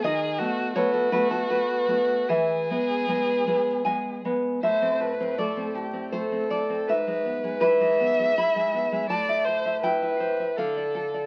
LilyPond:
<<
  \new Staff \with { instrumentName = "Violin" } { \time 3/4 \key e \phrygian \tempo 4 = 80 gis'8 fis'8 fis'2 | gis'2~ gis'8 r8 | c''8 b'8 a'8 g'8 a'4 | b'4 e''2 |
d''8 c''8 b'4 a'4 | }
  \new Staff \with { instrumentName = "Nylon-string guitar" } { \time 3/4 \key e \phrygian << { dis''4 cis''16 a'16 b'16 a'16 b'4 | e''2 gis''4 | e''4 d''4 c''8 d''8 | e''4 b'4 b''4 |
a''4 g''4 f''4 | } \\ { dis8 <a b>8 <a b>8 <a b>8 <a b>8 <a b>8 | e8 <gis b>8 <gis b>8 <gis b>8 <gis b>8 <gis b>8 | a,16 c'16 a'16 c'16 a16 c'16 a'16 c'16 a16 c'16 a'16 c'16 | gis,16 gis16 b16 gis16 e'16 gis16 b16 gis16 e'16 gis16 b16 gis16 |
a,16 e''16 c''16 e''16 e'16 e''16 c''16 e''16 d16 d''16 a'16 d''16 | } >> }
>>